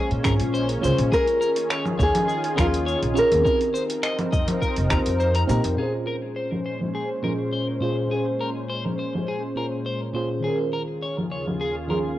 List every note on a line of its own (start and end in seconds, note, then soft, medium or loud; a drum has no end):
0.00 1.09 G#3 medium
0.00 1.09 A#3 medium
0.00 0.23 C#4 loud
0.00 3.42 C#4 medium
0.00 0.25 F4 medium
0.00 0.26 G#4 medium
0.00 0.85 C5 loud
0.00 0.22 C#5 medium
0.00 0.24 C#5 medium
0.11 0.20 A#2 medium
0.11 open hi-hat soft
0.23 0.35 G#1 loud
0.23 0.79 C#4 medium
0.23 0.80 F4 medium
0.23 0.80 G#4 medium
0.23 0.33 A#4 loud
0.23 finger snap medium
0.23 kick loud
0.23 shaker medium
0.40 0.75 A#1 medium
0.40 open hi-hat medium
0.40 shaker soft
0.54 0.68 C5 medium
0.54 shaker soft
0.69 open hi-hat soft
0.81 0.93 C#2 loud
0.81 1.07 C#4 medium
0.81 1.09 F4 medium
0.81 1.09 G#4 medium
0.81 0.97 C5 medium
0.81 1.10 C5 loud
0.81 shaker medium
0.98 1.07 A#1 medium
0.98 open hi-hat medium
0.98 shaker soft
1.08 3.43 D#3 medium
1.08 2.53 C#4 medium
1.08 2.54 F4 medium
1.08 3.43 F4 medium
1.08 1.26 G#4 loud
1.08 3.43 G#4 medium
1.08 kick loud
1.13 2.56 G#4 medium
1.13 1.67 A#4 loud
1.13 2.57 A#4 medium
1.13 shaker soft
1.27 open hi-hat soft
1.27 shaker soft
1.41 1.49 A#4 loud
1.41 shaker medium
1.56 open hi-hat medium
1.56 shaker soft
1.70 1.84 C#5 medium
1.70 finger snap medium
1.70 shaker soft
1.85 low conga medium
1.85 shaker soft
1.99 2.09 D#2 medium
1.99 2.61 G#4 loud
1.99 2.13 C#5 medium
1.99 kick loud
1.99 shaker medium
2.15 open hi-hat medium
2.15 low conga medium
2.15 shaker soft
2.28 2.42 G#4 medium
2.28 shaker soft
2.44 open hi-hat soft
2.56 2.93 D#2 medium
2.56 3.12 C#4 medium
2.56 3.13 F4 medium
2.56 3.13 G#4 medium
2.56 2.66 A#4 loud
2.56 3.14 C6 medium
2.56 finger snap medium
2.56 kick loud
2.56 low conga medium
2.56 shaker medium
2.60 3.19 F4 loud
2.74 open hi-hat medium
2.74 shaker soft
2.86 3.01 C#5 medium
2.86 shaker soft
3.02 3.20 A#1 medium
3.02 open hi-hat soft
3.14 3.41 C#4 loud
3.14 3.42 F4 medium
3.14 3.42 G#4 loud
3.14 3.30 C#5 medium
3.14 shaker medium
3.18 3.43 A#4 loud
3.18 5.17 A#4 loud
3.32 3.40 D#2 medium
3.32 open hi-hat medium
3.32 shaker soft
3.41 5.76 F3 medium
3.41 4.86 C4 medium
3.41 5.76 C4 medium
3.41 4.88 D#4 medium
3.41 5.76 D#4 medium
3.41 3.59 A#4 loud
3.41 5.76 A#4 medium
3.45 4.89 G4 medium
3.45 4.90 A#4 medium
3.45 kick loud
3.45 shaker soft
3.61 open hi-hat soft
3.61 shaker soft
3.74 3.83 C5 loud
3.74 shaker medium
3.90 open hi-hat medium
3.90 shaker soft
4.03 4.17 D#5 medium
4.03 finger snap medium
4.03 shaker soft
4.19 open hi-hat soft
4.19 low conga medium
4.19 shaker soft
4.32 4.43 F2 medium
4.32 4.46 D#5 medium
4.32 kick loud
4.32 shaker medium
4.48 open hi-hat medium
4.48 low conga medium
4.48 shaker soft
4.62 4.76 A#4 loud
4.62 kick medium
4.62 shaker soft
4.76 4.86 F1 medium
4.76 open hi-hat soft
4.76 shaker soft
4.89 5.01 D#2 medium
4.89 5.45 C4 medium
4.89 5.46 D#4 medium
4.89 5.46 G4 medium
4.89 5.47 C5 medium
4.89 4.99 A#5 medium
4.89 finger snap medium
4.89 kick loud
4.89 shaker medium
5.06 5.41 F2 medium
5.06 open hi-hat medium
5.06 shaker soft
5.20 5.34 C5 medium
5.20 shaker soft
5.35 5.43 A#5 medium
5.35 open hi-hat medium
5.47 5.59 A#2 loud
5.47 5.74 C4 loud
5.47 5.75 D#4 medium
5.47 5.75 G4 medium
5.47 5.63 A#4 medium
5.47 5.76 A#4 loud
5.47 shaker medium
5.64 5.74 F2 medium
5.64 open hi-hat medium
5.64 shaker soft
5.75 7.20 A#2 medium
5.75 10.40 A#2 medium
5.75 10.40 G#3 medium
5.75 7.21 C#4 medium
5.75 10.40 C#4 medium
5.75 7.22 F4 medium
5.75 5.92 G#4 medium
5.75 10.40 C5 medium
5.81 7.22 G#4 medium
5.81 7.23 C5 medium
6.07 6.16 A#4 medium
6.36 6.50 C5 medium
6.52 low conga medium
6.52 shaker soft
6.66 6.80 C5 medium
6.81 low conga medium
6.81 shaker soft
6.95 7.09 G#4 medium
7.22 7.78 A#2 medium
7.22 7.79 C#4 medium
7.22 7.79 F4 medium
7.22 7.79 G#4 medium
7.22 7.32 A#4 medium
7.22 low conga medium
7.22 shaker medium
7.53 7.67 C5 medium
7.80 8.06 A#2 medium
7.80 8.07 C#4 medium
7.80 8.08 F4 medium
7.80 8.08 G#4 medium
7.80 7.96 C5 medium
7.80 8.09 C5 medium
8.08 9.52 A#2 medium
8.08 9.53 C#4 medium
8.08 9.54 F4 medium
8.08 8.25 G#4 medium
8.13 9.55 G#4 medium
8.13 9.56 C5 medium
8.40 8.49 A#4 medium
8.69 8.83 C5 medium
8.85 low conga medium
8.85 shaker soft
8.99 9.13 C5 medium
9.15 low conga medium
9.15 shaker soft
9.28 9.42 G#4 medium
9.55 10.11 A#2 medium
9.55 10.11 C#4 medium
9.55 10.12 F4 medium
9.55 10.12 G#4 medium
9.55 9.65 A#4 medium
9.86 10.00 C5 medium
10.13 10.40 A#2 medium
10.13 10.40 C#4 medium
10.13 10.41 F4 medium
10.13 10.41 G#4 medium
10.13 10.29 C5 medium
10.13 10.42 C5 medium
10.40 11.85 D#3 medium
10.40 11.86 C#4 medium
10.40 10.58 G#4 medium
10.44 12.19 D#2 medium
10.44 12.19 C#3 medium
10.44 12.19 F4 medium
10.44 11.87 F4 medium
10.44 12.19 G#4 medium
10.44 11.88 G#4 medium
10.44 11.89 A#4 medium
10.73 10.82 A#4 medium
11.02 11.16 C#5 medium
11.18 low conga medium
11.18 shaker soft
11.31 11.45 C#5 medium
11.47 low conga medium
11.47 shaker soft
11.61 11.75 G#4 medium
11.87 12.19 D#3 medium
11.87 12.19 C#4 medium
11.87 12.19 F4 medium
11.87 12.19 G#4 medium
11.87 11.98 A#4 medium
11.87 12.19 C6 medium
11.87 low conga medium
11.87 shaker medium
12.06 shaker soft